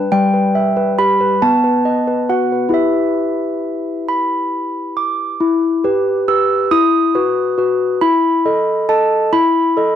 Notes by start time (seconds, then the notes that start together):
Already playing: B4
0.12 G3 G5
0.34 B4
0.55 E5
0.77 B4
0.98 G4 B5
1.21 B4
1.42 B3 A5
1.64 B4
1.85 D#5
2.07 B4
2.29 F#4 F#5
2.52 B4
2.69 E4 G4 B4
2.74 E5
4.08 B5
4.97 D6
5.40 E4
5.84 G4 B4
6.28 G4 B4 E6
6.71 E4 D#6
7.15 F#4 B4
7.58 F#4 B4
8.01 E4 B5
8.45 A4 D#5
8.89 A4 D#5 A5
9.33 E4 B5
9.77 A4 D#5